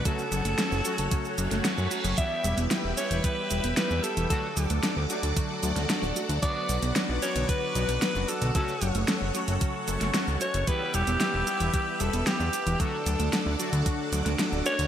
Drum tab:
HH |x-xxx-xxx-xxx-xx|x-xxx-xxx-xxx-xx|x-xxx-xxx-xxx-xx|x-xxx-xxx-xxx-xx|
SH |xxxxxxxxxxxxxxxx|x-xxx-xxx-xxxxxx|x-xxx-xxx-xxxxxx|x-xxx-xxx-xxxxxx|
SD |----o------oo---|----o-------o---|----o------oo---|----o-------o---|
BD |o-------o-------|o-------o-------|o-------o-------|o-------o-------|

HH |x-xxx-xxx-xxx-xx|x-xxx-xxx-xxx-xx|x-xxx-xxx-xxx-xx|
SH |xxxxx-xxx-xxxxxx|x-xxx-xxx-xxxxxx|x-xxx-xxx-xxxxxx|
SD |----o------oo---|----o-------o---|----o------oo---|
BD |o-------o-------|o-------o-------|o-------o-------|